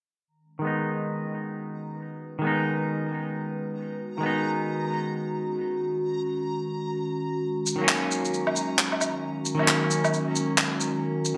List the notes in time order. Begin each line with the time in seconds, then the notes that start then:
0.28 D#3 A#5
0.38 C#4
0.44 G#3
0.59 D#3 G#3
0.65 B3 D#4
0.71 F#4
0.83 B4
2.39 D#3 G#3
2.44 B3 D#4
4.18 D#3 G#3
4.23 B3 D#4
7.66 shaker
7.76 D#3 F#3
7.81 A#3 C#4
7.89 clap
8.11 A#4, shaker
8.25 shaker
8.34 shaker
8.47 low woodblock
8.56 shaker
8.79 clap
8.92 low woodblock
9.01 low woodblock, shaker
9.45 shaker
9.55 D#3 F#3
9.59 A#3 C#4, low woodblock
9.68 clap
9.91 shaker
10.04 low woodblock, shaker
10.14 shaker
10.36 shaker
10.58 clap
10.80 shaker
11.25 shaker